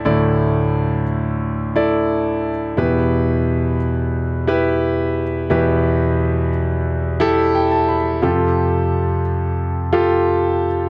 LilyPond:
<<
  \new Staff \with { instrumentName = "Grand piano" } { \time 4/4 \key e \phrygian \tempo 4 = 88 << { r1 | r1 | r2 r8 e''8 g''16 a''16 b''8 | r1 | } \\ { <e' a' d''>4. r4 <e' a' d''>4 r8 | <e' g' b'>4. r4 <e' g' b'>4 r8 | <e' g' b'>4. r4 <e' g' a'>4 r8 | <f' g' a'>4. r4 <f' g' a'>4 r8 | } >> }
  \new Staff \with { instrumentName = "Grand piano" } { \clef bass \time 4/4 \key e \phrygian <d, a,>1 | <e, b,>1 | <e, b,>1 | <f, c>1 | }
>>